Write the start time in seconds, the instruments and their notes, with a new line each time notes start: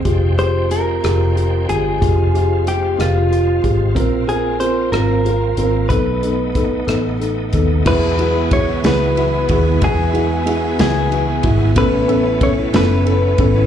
Already playing: tonewheel organ C4
0.05 fingered electric bass F1, tonewheel organ F3 G#3 G5, felt piano G#3 F4 G4, kick, closed hi-hat
0.38 felt piano G#3 F4 G4, clean electric guitar C5, closed hi-hat
0.70 felt piano G#3 F4 G4, clean electric guitar A#4, closed hi-hat
1.03 fingered electric bass F1, felt piano G#3 F4 G4, cross-stick, closed hi-hat
1.36 felt piano F4 G4, closed hi-hat
1.68 fingered electric bass G1, felt piano G#3 F4 G4, clean electric guitar G#4, closed hi-hat
2.01 fingered electric bass F1, felt piano G#3 F4 G4, tonewheel organ F4, kick, closed hi-hat
2.34 felt piano G#3 F4 G4, closed hi-hat
2.67 felt piano G#3 F4 G4, clean electric guitar G4, closed hi-hat
2.98 fingered electric bass F1, felt piano G#3 F4 G4, clean electric guitar F4, cross-stick, closed hi-hat
3.30 felt piano F4 G4, closed hi-hat
3.63 fingered electric bass G#1, felt piano G#3 F4 G4, kick, closed hi-hat
3.95 fingered electric bass A#1, tonewheel organ A#3 F4, felt piano C4 F4 A#4, kick, closed hi-hat
4.27 felt piano C4 F4 A#4, clean electric guitar G#4, closed hi-hat
4.60 felt piano C4 F4 A#4, clean electric guitar C5, closed hi-hat
4.92 fingered electric bass G#1, felt piano C4 F4 A#4, clean electric guitar A#4, cross-stick, closed hi-hat
5.25 felt piano F4 A#4, closed hi-hat
5.57 fingered electric bass G#1, felt piano C4 F4 A#4, closed hi-hat
5.89 fingered electric bass B1, tonewheel organ A3 B3 D#4, felt piano B3 D#4 A4, clean electric guitar B4, kick, closed hi-hat
6.22 felt piano B3 D#4 A4, closed hi-hat
6.55 felt piano B3 D#4 A4, kick, cross-stick, closed hi-hat
6.87 fingered electric bass A1, felt piano B3 D#4 A4, cross-stick, closed hi-hat
7.20 felt piano D#4 A4, closed hi-hat
7.53 fingered electric bass D#2, felt piano B3 D#4 A4, kick, closed hi-hat
7.85 fingered electric bass E2, steel-string acoustic guitar E3 F#3 B3 E4 G#4, felt piano G#3 E4 F#4, tonewheel organ B3 E4 F#4 G#4, clean electric guitar B4, kick, crash
8.18 steel-string acoustic guitar F#3 B3 E4 G#4, felt piano G#3 E4 F#4, ride
8.34 steel-string acoustic guitar B3 E4 G#4
8.50 felt piano G#3 E4 F#4, clean electric guitar C#5, kick, ride
8.67 steel-string acoustic guitar B3 E4 G#4
8.83 fingered electric bass C#2, steel-string acoustic guitar E3 F#3 B3 E4 G#4, felt piano G#3 E4 F#4, clean electric guitar B4, snare, ride
9.16 steel-string acoustic guitar F#3 B3 E4 G#4, felt piano E4 F#4, ride
9.32 steel-string acoustic guitar B3 E4 G#4
9.49 fingered electric bass D#2, felt piano G#3 E4 F#4, kick, ride
9.65 steel-string acoustic guitar B3 E4 G#4
9.81 fingered electric bass E2, steel-string acoustic guitar E3 F#3 B3 E4 G#4, felt piano G#3 E4 F#4, clean electric guitar G#4, kick, ride
10.13 steel-string acoustic guitar F#3 B3 E4, felt piano G#3 E4 F#4, ride
10.17 steel-string acoustic guitar G#4
10.30 steel-string acoustic guitar B3 E4 G#4
10.45 felt piano G#3 E4 F#4, ride
10.62 steel-string acoustic guitar B3 E4 G#4
10.78 fingered electric bass C#2, steel-string acoustic guitar E3 F#3 B3 E4 G#4, felt piano G#3 E4 F#4, clean electric guitar G#4, snare, ride
11.11 steel-string acoustic guitar F#3 B3 E4 G#4, felt piano E4 F#4, ride
11.27 steel-string acoustic guitar B3 E4 G#4
11.43 fingered electric bass G#1, felt piano G#3 E4 F#4, kick, ride
11.60 steel-string acoustic guitar B3 E4 G#4
11.76 fingered electric bass A1, steel-string acoustic guitar A3 C#4 E4 B4, tonewheel organ A3 C#4, felt piano B3 C#4 A4, clean electric guitar B4, kick, ride
12.08 steel-string acoustic guitar A3 C#4 E4 B4, felt piano B3 C#4 A4, ride
12.25 steel-string acoustic guitar C#4 E4 B4
12.41 felt piano B3 C#4 A4, clean electric guitar C#5, kick, ride
12.58 steel-string acoustic guitar C#4 E4 B4
12.73 fingered electric bass F#1, steel-string acoustic guitar A3 C#4 E4 B4, felt piano B3 C#4 A4, clean electric guitar B4, snare, ride
13.06 steel-string acoustic guitar A3 C#4 E4 B4, felt piano C#4 A4, ride
13.22 steel-string acoustic guitar C#4 E4 B4
13.38 fingered electric bass G#1, felt piano B3 C#4 A4, kick, ride
13.54 steel-string acoustic guitar C#4 E4 B4